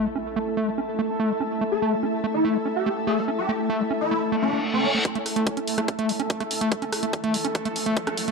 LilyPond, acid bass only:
\new Staff \with { instrumentName = "Acid bass" } { \time 4/4 \tempo 4 = 144 g16 cis'16 r16 a16 r16 a16 g16 cis'16 r16 a16 r16 a16 g16 cis'16 r16 a16 | r16 a16 g16 cis'16 r16 a16 r16 a16 g16 cis'16 r16 a16 r16 a16 g16 cis'16 | r16 a16 r16 a16 g16 cis'16 r16 a16 r16 a16 a16 a16 r16 a16 a16 a16 | r16 a16 r16 a16 g16 cis'16 r16 a16 r16 a16 g16 cis'16 r16 a16 r16 a16 |
g16 cis'16 r16 a16 r16 a16 g16 cis'16 r16 a16 r16 a16 g16 cis'16 r16 a16 | }